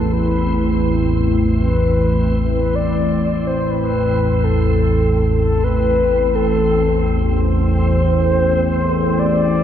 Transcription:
Already playing: synth drone A1 E2, analog synth pad A3 E4 B4, synth texture C4, soft synth lead A4
0.12 soft synth lead B4
1.56 soft synth lead B4
2.51 soft synth lead B4
2.75 soft synth lead D5
3.47 soft synth lead C5
3.70 soft synth lead B4
4.44 soft synth lead A4
5.39 soft synth lead A4
5.64 soft synth lead B4
6.35 soft synth lead A4
7.11 analog synth pad C5
7.29 soft synth lead C5
9.19 soft synth lead D5

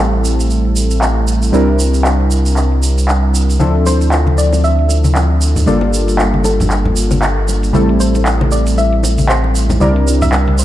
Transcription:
Already playing: sub bass A1, synth keys G3 A3 C4 E4 A4
0.13 closed hi-hat
0.25 shaker
0.39 closed hi-hat, shaker
0.50 shaker
0.65 closed hi-hat
0.76 shaker
0.91 closed hi-hat, shaker
1.02 clap, shaker
1.28 shaker
1.42 closed hi-hat, shaker
1.52 sub bass C2, synth keys G3 C4 D4 E4 A#4, shaker
1.68 closed hi-hat
1.79 shaker
1.94 closed hi-hat, shaker
2.05 clap, shaker
2.20 closed hi-hat
2.31 shaker
2.46 closed hi-hat, shaker
2.57 clap, shaker
2.72 closed hi-hat
2.83 shaker
2.98 closed hi-hat, shaker
3.09 clap, shaker
3.35 shaker
3.50 closed hi-hat, shaker
3.59 sub bass D2, synth keys F3 C4 D4 E4 A4, high bongo, high conga, shaker
3.75 closed hi-hat
3.86 synth pluck C5, high bongo, shaker
4.01 closed hi-hat, shaker
4.12 clap, shaker
4.27 closed hi-hat, high bongo, high conga
4.38 synth pluck D5, shaker
4.53 closed hi-hat, high bongo, shaker
4.64 synth pluck E5, shaker
4.79 closed hi-hat
4.89 high bongo, shaker
5.04 closed hi-hat, high conga, shaker
5.15 clap, high bongo, shaker
5.41 shaker
5.56 closed hi-hat, high bongo, low conga, shaker
5.66 sub bass G1, synth keys G3 A#3 D4 F4 A4, synth pluck D5, high conga, shaker
5.81 closed hi-hat, high bongo
5.94 shaker
6.08 closed hi-hat, shaker
6.19 clap, high bongo, shaker
6.34 closed hi-hat, high conga
6.44 synth pluck A4, high bongo, shaker
6.60 closed hi-hat, low conga, shaker
6.71 clap, shaker
6.85 closed hi-hat, high bongo, low conga
6.96 shaker
7.11 closed hi-hat, high bongo, high conga, shaker
7.22 clap, shaker
7.48 high bongo, shaker
7.63 closed hi-hat, shaker
7.73 sub bass A1, synth keys G3 A3 C4 E4 A4, high bongo, high conga, shaker
7.89 closed hi-hat
8.00 synth pluck C5, shaker
8.15 closed hi-hat, high bongo, shaker
8.26 clap, shaker
8.41 closed hi-hat, high bongo, high conga
8.52 synth pluck D5, shaker
8.67 closed hi-hat, shaker
8.78 synth pluck E5, high bongo, shaker
8.93 closed hi-hat
9.03 high bongo, shaker
9.18 closed hi-hat, high conga, shaker
9.29 synth pluck C5, clap, shaker
9.44 high bongo
9.55 shaker
9.69 closed hi-hat, high bongo, low conga, shaker
9.80 sub bass C2, synth keys G3 C4 D4 E4 A#4, synth pluck D5, high conga, shaker
9.96 closed hi-hat
10.07 high bongo, shaker
10.22 synth pluck E5, closed hi-hat, low conga, shaker
10.33 clap, high bongo, shaker
10.47 closed hi-hat, high conga
10.58 synth pluck C5, shaker

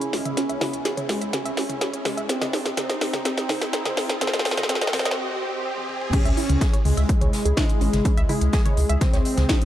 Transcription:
Already playing: analog synth pad C#4 E4 G#4, riser
0.01 synth arpeggio sound C#5, closed hi-hat
0.13 analog synth bass G#1, analog synth lead G#3, snare, open hi-hat
0.25 analog synth bass G#1, synth arpeggio sound E5, closed hi-hat, mid tom
0.37 analog synth lead C#4, synth arpeggio sound C#4, snare, closed hi-hat
0.49 analog synth bass C#2, synth arpeggio sound E5, closed hi-hat
0.61 synth arpeggio sound E4, snare, open hi-hat, mid tom
0.73 analog synth bass C#2, closed hi-hat
0.85 synth arpeggio sound G#4, snare, closed hi-hat
0.97 synth arpeggio sound C#5, closed hi-hat, mid tom
1.09 analog synth bass C#2, analog synth lead G#3, snare, open hi-hat
1.21 analog synth bass C#2, synth arpeggio sound E5, closed hi-hat
1.33 analog synth lead C#4, synth arpeggio sound C#4, snare, closed hi-hat, mid tom
1.45 analog synth bass C#2, synth arpeggio sound E5, closed hi-hat
1.57 synth arpeggio sound E4, snare, open hi-hat
1.70 analog synth bass C#2, closed hi-hat, mid tom
1.81 synth arpeggio sound G#4, snare, closed hi-hat
1.93 synth arpeggio sound C#5, closed hi-hat
2.05 analog synth bass C#2, analog synth lead G#3, snare, open hi-hat, mid tom
2.17 analog synth bass C#2, synth arpeggio sound E5, closed hi-hat
2.29 analog synth lead C4, synth arpeggio sound C4, analog synth pad C4 D#4, snare, closed hi-hat
2.41 analog synth bass C2, synth arpeggio sound D#5, snare, closed hi-hat, mid tom
2.53 synth arpeggio sound D#4, snare, open hi-hat
2.65 analog synth bass C2, snare, closed hi-hat
2.77 analog synth lead C4, synth arpeggio sound C4, snare, closed hi-hat, mid tom
2.89 synth arpeggio sound D#5, snare, closed hi-hat
3.01 analog synth bass C2, synth arpeggio sound D#4, snare, open hi-hat
3.13 analog synth bass C2, snare, closed hi-hat, mid tom
3.25 analog synth lead C4, synth arpeggio sound C4, snare, closed hi-hat
3.37 analog synth bass C2, synth arpeggio sound D#5, snare, closed hi-hat
3.49 synth arpeggio sound D#4, snare, open hi-hat, mid tom
3.61 analog synth bass C2, snare, closed hi-hat
3.73 analog synth lead C4, synth arpeggio sound C4, snare, closed hi-hat
3.85 synth arpeggio sound D#5, snare, closed hi-hat, mid tom
3.97 analog synth bass G#1, synth arpeggio sound D#4, snare, open hi-hat
4.09 analog synth bass G#1, snare, closed hi-hat
4.21 analog synth lead C4, synth arpeggio sound C4, snare, closed hi-hat, mid tom
4.27 snare
4.33 analog synth bass C2, synth arpeggio sound D#5, snare, closed hi-hat
4.39 snare
4.45 analog synth lead C4, synth arpeggio sound C4, snare, open hi-hat
4.51 snare
4.57 analog synth bass C2, synth arpeggio sound D#5, snare, closed hi-hat, mid tom
4.63 snare
4.69 analog synth lead C4, synth arpeggio sound C4, snare, closed hi-hat
4.75 snare
4.81 synth arpeggio sound D#5, snare, closed hi-hat
4.87 snare
4.93 analog synth bass C2, analog synth lead C4, synth arpeggio sound C4, snare, open hi-hat, mid tom
4.99 snare
5.05 analog synth bass C2, synth arpeggio sound D#5, snare, closed hi-hat
5.11 snare
5.17 analog synth lead C4
5.41 analog synth lead C4
5.65 analog synth lead C4
5.77 high tom
5.89 analog synth lead C4, mid tom
6.01 mid tom
6.13 analog synth pad G#3 E4 G#4, analog synth lead C#4, synth arpeggio sound C#4, kick, closed hi-hat, mid tom, crash
6.25 analog synth bass C#2, synth arpeggio sound E5, closed hi-hat
6.37 synth arpeggio sound E4, closed hi-hat, open hi-hat
6.49 analog synth bass C#2, closed hi-hat, mid tom
6.61 synth arpeggio sound G#4, kick, snare, closed hi-hat
6.73 synth arpeggio sound C#5, closed hi-hat
6.85 analog synth bass C#2, analog synth lead G#3, open hi-hat, mid tom
6.97 analog synth bass C#2, synth arpeggio sound E5, closed hi-hat
7.09 kick, closed hi-hat
7.21 analog synth bass C#2, synth arpeggio sound C#5, closed hi-hat, mid tom
7.33 snare, closed hi-hat, open hi-hat
7.45 analog synth bass C#2, synth arpeggio sound G#4, closed hi-hat
7.57 analog synth lead G#3, synth arpeggio sound E4, kick, snare, closed hi-hat, mid tom
7.69 closed hi-hat
7.81 analog synth bass G#1, synth arpeggio sound C#4, closed hi-hat, open hi-hat
7.93 analog synth bass G#1, snare, closed hi-hat, mid tom
8.05 synth arpeggio sound C#4, kick, closed hi-hat
8.17 analog synth bass C#2, synth arpeggio sound E5, closed hi-hat
8.29 analog synth lead G#3, synth arpeggio sound E4, closed hi-hat, open hi-hat, mid tom
8.41 analog synth bass C#2, closed hi-hat
8.53 synth arpeggio sound G#4, kick, snare, closed hi-hat
8.65 synth arpeggio sound C#5, closed hi-hat, mid tom
8.77 analog synth bass C#2, closed hi-hat, open hi-hat
8.89 analog synth bass C#2, synth arpeggio sound E5, closed hi-hat
9.01 analog synth lead C4, kick, snare, closed hi-hat, mid tom
9.13 analog synth bass C#2, synth arpeggio sound C#5, snare, closed hi-hat
9.25 closed hi-hat, open hi-hat
9.37 analog synth bass C#2, synth arpeggio sound G#4, snare, closed hi-hat, mid tom
9.49 synth arpeggio sound E4, kick, snare, closed hi-hat
9.61 closed hi-hat

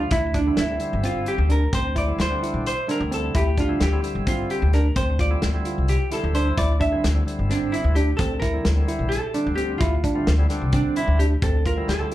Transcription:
Already playing: tonewheel organ D3 G3 C4 F4, hollow-body jazz guitar F4
0.11 upright bass D2, hollow-body jazz guitar E4, tine electric piano E4, kick, closed hi-hat
0.34 tine electric piano D4, hollow-body jazz guitar D4, kick, closed hi-hat
0.46 tonewheel organ D3 G3 C4 E4
0.57 upright bass D2, hollow-body jazz guitar E4, snare, closed hi-hat
0.69 tonewheel organ D3 G3 C4 E4
0.79 tonewheel organ D3 G3 C4 E4, closed hi-hat
0.93 upright bass G1
1.04 tine electric piano C4, hollow-body jazz guitar F4, closed hi-hat
1.26 hollow-body jazz guitar G4, closed hi-hat
1.38 upright bass D2
1.49 tine electric piano D4, hollow-body jazz guitar A#4, closed hi-hat
1.73 upright bass D2, tine electric piano C4, hollow-body jazz guitar C5, kick, closed hi-hat
1.96 tine electric piano E4, hollow-body jazz guitar D5, kick, closed hi-hat
2.06 tonewheel organ D3 G3 C4 E4
2.18 upright bass D2, hollow-body jazz guitar C5, snare, closed hi-hat
2.29 tonewheel organ D3 G3 C4 D4
2.43 tine electric piano E4, closed hi-hat
2.54 upright bass A#1
2.66 hollow-body jazz guitar C5, closed hi-hat
2.87 tonewheel organ D3 G3 C4 E4, tine electric piano D4, hollow-body jazz guitar A#4, snare, closed hi-hat
3.00 upright bass D2
3.12 tine electric piano C4, hollow-body jazz guitar A4, closed hi-hat
3.35 upright bass D2, tine electric piano E4, hollow-body jazz guitar G4, kick, closed hi-hat
3.58 tine electric piano D4, hollow-body jazz guitar F4, kick, closed hi-hat
3.68 tonewheel organ D3 G3 C4 E4
3.80 upright bass D2, hollow-body jazz guitar G4, snare, closed hi-hat
3.92 tonewheel organ D3 G3 C4 E4
4.02 tonewheel organ D3 G3 C4 E4, closed hi-hat
4.15 upright bass G1
4.27 tine electric piano C4, hollow-body jazz guitar F4, kick, closed hi-hat
4.50 hollow-body jazz guitar G4, closed hi-hat
4.62 upright bass D2
4.73 tine electric piano D4, hollow-body jazz guitar A#4, snare, closed hi-hat
4.96 upright bass D2, tine electric piano C4, hollow-body jazz guitar C5, kick, closed hi-hat
5.19 tine electric piano F4, hollow-body jazz guitar D5, kick, snare, closed hi-hat
5.29 tonewheel organ D3 G3 C4 E4
5.42 upright bass D2, snare, closed hi-hat
5.53 tonewheel organ D3 G3 C4 E4
5.65 tine electric piano F4, closed hi-hat
5.78 upright bass C2
5.88 hollow-body jazz guitar G4, closed hi-hat
6.10 tonewheel organ D3 G3 C4 E4, tine electric piano E4, hollow-body jazz guitar A4, snare, closed hi-hat
6.24 upright bass D2
6.35 tine electric piano D4, hollow-body jazz guitar C5, closed hi-hat
6.58 upright bass D2, tine electric piano E4, hollow-body jazz guitar D5, kick, closed hi-hat
6.80 tine electric piano D4, hollow-body jazz guitar E5, kick, closed hi-hat
6.91 tonewheel organ D3 G3 C4 E4
7.04 upright bass D2, snare, closed hi-hat
7.14 tonewheel organ D3 G3 C4 E4
7.26 tonewheel organ D3 G3 C4 E4, closed hi-hat
7.39 upright bass G1
7.50 tine electric piano C4, hollow-body jazz guitar D4, snare, closed hi-hat
7.72 hollow-body jazz guitar E4, closed hi-hat
7.84 upright bass D2
7.95 tine electric piano D4, hollow-body jazz guitar G4, closed hi-hat
8.17 upright bass D2, tine electric piano C4, hollow-body jazz guitar A4, kick, closed hi-hat
8.40 tine electric piano E4, hollow-body jazz guitar A#4, kick, snare, closed hi-hat
8.53 tonewheel organ D3 G3 C4 E4
8.65 upright bass D2, snare, closed hi-hat
8.75 tonewheel organ D3 G3 C4 E4
8.88 tine electric piano E4, closed hi-hat
8.99 upright bass A#1
9.09 hollow-body jazz guitar A4, closed hi-hat
9.34 tonewheel organ D3 G3 C4 D4, tine electric piano D4, closed hi-hat
9.46 upright bass D2
9.55 tine electric piano C4, hollow-body jazz guitar G4, closed hi-hat
9.78 upright bass D2, tine electric piano E4, hollow-body jazz guitar F4, kick, closed hi-hat
10.04 tine electric piano D4, kick, closed hi-hat
10.14 tonewheel organ D3 G3 C4 F4
10.27 upright bass D2, snare, closed hi-hat
10.38 tonewheel organ D3 G3 C4 E4
10.49 tonewheel organ D3 G3 C4 D4, snare, closed hi-hat
10.61 upright bass C2
10.73 tine electric piano C4, hollow-body jazz guitar D4, kick, closed hi-hat
10.96 hollow-body jazz guitar E4, closed hi-hat
11.08 upright bass D2
11.19 tine electric piano D4, hollow-body jazz guitar G4, closed hi-hat
11.42 upright bass D2, tine electric piano C4, hollow-body jazz guitar A4, kick, closed hi-hat
11.66 tine electric piano F4, hollow-body jazz guitar A#4, kick, closed hi-hat
11.76 tonewheel organ D3 G3 C4 E4
11.88 upright bass D2, hollow-body jazz guitar A4, snare, closed hi-hat
12.00 tonewheel organ D3 G3 C4 E4
12.12 closed hi-hat

